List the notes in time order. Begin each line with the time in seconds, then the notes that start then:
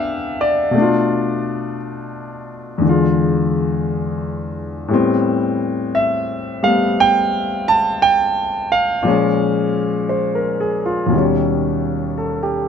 Already playing: C3 E3 B3 D4 E5 F5 F#5 G5
0.41 D5
0.71 B2 A3
0.78 D4 F4
2.78 E2 D3
2.85 G#3 F4
4.88 A2 G3 B3
4.94 C4
5.95 E5
6.63 G3 A3 B3 F5
7.00 G5
7.68 A5
8.02 G5
8.72 F5
9.03 A#2 F3 G#3
9.08 C#4
10.09 C5
10.35 A#4
10.60 G#4
10.86 F4
11.07 D#2 B2
11.12 D#3 G3
11.18 C#4
12.18 A4
12.43 G4